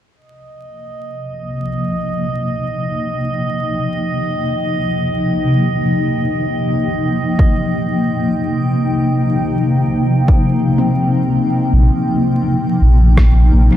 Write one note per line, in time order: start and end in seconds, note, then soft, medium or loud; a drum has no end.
0.16 13.77 C3 medium
0.16 11.74 D#5 medium
0.28 13.77 F3 medium
0.43 13.77 A#3 medium
1.18 13.77 D#4 medium
1.72 13.77 G5 medium
7.39 kick medium
10.28 kick loud
10.78 12.97 C4 medium
11.73 11.89 A#1 medium
12.81 13.50 A#1 medium
13.17 kick medium
13.17 cross-stick medium
13.53 13.70 A#1 medium